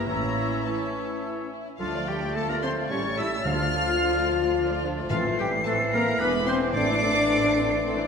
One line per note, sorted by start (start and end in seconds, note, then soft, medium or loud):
0.00 1.60 E4 medium
0.00 1.61 E5 medium
0.06 0.56 A1 medium
0.06 0.90 A2 medium
0.06 0.64 E3 soft
0.06 0.22 A3 medium
0.06 0.64 A#3 medium
0.06 0.64 C#4 soft
0.06 1.59 C#4 medium
0.06 0.65 E4 soft
0.06 0.64 E4 soft
0.06 0.64 C#5 soft
0.06 0.64 A#5 medium
0.06 0.63 E6 soft
0.24 0.37 C#4 soft
0.39 0.52 E4 soft
0.52 0.66 C#4 soft
0.65 1.50 E3 soft
0.65 1.23 A3 soft
0.65 0.80 A3 soft
0.65 1.50 C#4 medium
0.65 1.50 E4 soft
0.65 1.50 C#5 soft
0.65 1.23 A5 medium
0.65 1.50 E6 soft
0.81 0.95 C#4 soft
0.93 1.08 E4 soft
1.08 1.23 C#4 soft
1.21 1.36 A3 soft
1.37 1.52 C#4 soft
1.52 1.66 E4 soft
1.66 1.80 C#4 soft
1.79 2.87 D2 medium
1.79 1.88 F3 medium
1.79 2.06 F3 medium
1.79 1.94 F3 medium
1.79 2.93 A3 medium
1.79 1.93 D4 medium
1.79 1.94 D4 medium
1.79 2.11 F4 medium
1.79 2.10 F4 medium
1.79 1.94 A4 medium
1.79 2.05 F5 medium
1.79 5.07 A6 medium
1.94 2.08 A3 soft
1.94 2.08 F4 medium
1.94 2.09 F4 medium
1.94 2.08 D5 medium
2.07 2.22 F3 soft
2.07 2.16 G3 medium
2.07 2.22 G3 medium
2.07 2.22 D4 medium
2.07 2.23 D4 medium
2.07 2.37 G4 medium
2.07 2.23 A4 medium
2.07 2.35 G5 medium
2.23 2.36 A3 soft
2.23 2.36 F4 soft
2.23 2.37 F4 soft
2.23 2.37 D5 soft
2.35 2.48 F3 medium
2.35 2.42 A3 medium
2.35 2.41 A3 medium
2.35 2.48 D4 soft
2.35 2.49 D4 medium
2.35 2.51 A4 medium
2.35 2.49 A4 medium
2.35 2.49 A5 medium
2.49 2.63 A3 soft
2.49 2.55 A#3 medium
2.49 2.56 A#3 medium
2.49 2.64 F4 soft
2.49 2.65 F4 soft
2.49 2.65 A#4 medium
2.49 2.62 A#4 medium
2.49 2.65 D5 medium
2.49 2.55 A#5 medium
2.62 2.78 F3 medium
2.62 2.71 C4 medium
2.62 2.90 C4 medium
2.62 2.78 D4 medium
2.62 2.78 D4 soft
2.62 2.78 A4 soft
2.62 2.75 C5 medium
2.62 2.93 C5 medium
2.62 2.70 C6 medium
2.77 2.92 A3 medium
2.77 2.91 F4 soft
2.77 2.92 F4 medium
2.77 2.91 D5 medium
2.90 3.46 A1 medium
2.90 3.45 G3 medium
2.90 3.04 G3 medium
2.90 2.99 C#4 medium
2.90 3.04 C#4 medium
2.90 3.04 E4 medium
2.90 3.04 A4 medium
2.90 3.18 C#5 medium
2.90 3.20 C#5 medium
2.90 3.18 C#6 medium
3.05 3.19 A3 medium
3.05 3.19 C#4 medium
3.05 3.18 G4 medium
3.05 3.19 C#5 medium
3.18 3.32 G3 medium
3.18 3.27 E4 medium
3.18 3.33 E4 medium
3.18 3.32 E4 medium
3.18 3.32 A4 medium
3.18 3.31 E5 medium
3.18 3.46 E5 medium
3.18 3.46 E6 medium
3.32 3.46 A3 medium
3.32 3.46 C#4 medium
3.32 3.47 G4 medium
3.32 3.47 C#5 medium
3.45 5.07 D2 medium
3.45 4.24 D3 medium
3.45 3.58 F3 medium
3.45 5.07 F3 medium
3.45 3.59 D4 medium
3.45 3.60 D4 medium
3.45 4.81 F4 medium
3.45 3.60 A4 medium
3.45 4.80 F5 medium
3.45 4.81 F5 medium
3.45 4.80 F6 loud
3.60 3.73 A3 soft
3.60 3.73 F4 medium
3.60 3.74 F4 medium
3.60 3.74 D5 medium
3.74 3.87 F3 medium
3.74 3.87 D4 medium
3.74 3.88 D4 medium
3.74 3.88 A4 medium
3.86 4.00 A3 medium
3.86 4.00 F4 medium
3.86 4.02 F4 medium
3.86 4.02 D5 medium
4.01 4.14 F3 medium
4.01 4.14 D4 medium
4.01 4.14 A4 medium
4.16 4.29 A3 soft
4.16 4.29 F4 medium
4.16 4.30 F4 medium
4.16 4.30 D5 medium
4.30 4.43 F3 medium
4.30 4.43 D4 medium
4.30 4.43 A4 medium
4.43 4.57 A3 medium
4.43 4.57 F4 medium
4.43 4.57 D5 medium
4.57 4.69 F3 medium
4.57 4.69 D4 medium
4.57 4.70 D4 medium
4.57 4.70 A4 medium
4.70 4.84 A3 medium
4.70 4.84 F4 medium
4.70 4.85 F4 medium
4.70 4.84 D5 medium
4.85 4.98 F3 medium
4.85 4.98 D4 medium
4.85 4.98 A4 medium
4.98 5.11 A3 medium
4.98 5.12 F4 medium
4.98 5.12 D5 medium
5.10 6.19 A1 medium
5.10 5.88 A2 medium
5.10 8.05 E3 medium
5.10 5.24 E3 medium
5.10 5.23 F3 medium
5.10 5.20 F3 medium
5.10 5.24 C4 medium
5.10 5.23 F4 medium
5.10 5.37 F4 medium
5.10 5.24 A4 medium
5.10 5.18 F5 medium
5.10 6.21 C7 medium
5.25 5.38 A3 medium
5.25 5.39 E4 medium
5.25 5.39 C5 medium
5.38 5.52 E3 medium
5.38 5.65 G3 medium
5.38 5.47 G3 medium
5.38 5.52 C4 medium
5.38 5.51 G4 medium
5.38 5.52 G4 medium
5.38 5.52 A4 medium
5.38 5.46 G5 medium
5.52 5.66 A3 medium
5.52 5.66 E4 medium
5.52 5.66 C5 medium
5.64 5.78 E3 medium
5.64 5.77 A3 medium
5.64 5.74 A3 medium
5.64 5.78 C4 medium
5.64 5.79 C4 medium
5.64 5.78 A4 medium
5.64 5.93 A4 medium
5.64 5.73 A5 medium
5.78 5.92 A3 medium
5.78 5.93 E4 medium
5.78 5.93 C5 medium
5.92 6.06 E3 medium
5.92 6.19 A#3 medium
5.92 6.01 A#3 medium
5.92 6.06 C4 medium
5.92 6.07 A4 medium
5.92 6.20 A#4 medium
5.92 6.24 A#4 medium
5.92 6.19 A#5 medium
6.06 6.19 A3 medium
6.06 6.20 E4 medium
6.06 6.19 C5 medium
6.19 6.73 E1 medium
6.19 6.32 E3 medium
6.19 6.32 B3 medium
6.19 6.47 B3 medium
6.19 6.33 D4 medium
6.19 6.32 G#4 medium
6.19 6.32 B4 medium
6.19 6.48 B4 medium
6.19 6.47 B5 loud
6.19 6.74 D6 medium
6.33 6.47 D3 medium
6.33 6.47 G#3 medium
6.33 6.47 E4 medium
6.33 6.47 B4 medium
6.46 6.60 E3 medium
6.46 6.60 B3 medium
6.46 6.74 C4 medium
6.46 6.59 C4 medium
6.46 6.61 D4 medium
6.46 6.61 G#4 medium
6.46 6.60 C5 medium
6.46 6.74 C5 medium
6.46 6.55 C6 medium
6.60 6.74 D3 medium
6.60 6.74 G#3 medium
6.60 6.75 E4 medium
6.60 6.75 B4 medium
6.73 8.07 A1 medium
6.73 7.51 A2 medium
6.73 6.87 A3 medium
6.73 6.87 C4 medium
6.73 6.88 C4 medium
6.73 8.07 D4 loud
6.73 8.07 D4 medium
6.73 6.87 A4 medium
6.73 8.07 D5 medium
6.73 8.07 D5 loud
6.73 8.07 D6 loud
6.73 8.07 C7 medium
6.89 7.02 E3 medium
6.89 7.00 A3 medium
6.89 7.02 E4 medium
6.89 7.02 C5 medium
7.01 7.15 A3 medium
7.01 7.15 C4 medium
7.01 7.15 A4 medium
7.16 7.29 E3 medium
7.16 7.28 A3 medium
7.16 7.29 E4 medium
7.16 7.29 C5 medium
7.28 7.42 A3 medium
7.28 7.41 C4 medium
7.28 7.41 A4 medium
7.43 7.57 E3 medium
7.43 7.56 A3 medium
7.43 7.56 E4 medium
7.43 7.56 C5 medium
7.56 7.70 A3 medium
7.56 7.69 C4 medium
7.56 7.70 C4 medium
7.56 7.70 A4 medium
7.70 7.83 E3 medium
7.70 7.84 A3 medium
7.70 7.84 E4 medium
7.70 7.84 C5 medium
7.84 7.96 A3 medium
7.84 7.96 C4 medium
7.84 7.96 A4 medium
7.96 8.07 E3 medium
7.96 8.07 A3 medium
7.96 8.07 E4 medium
7.96 8.07 C5 medium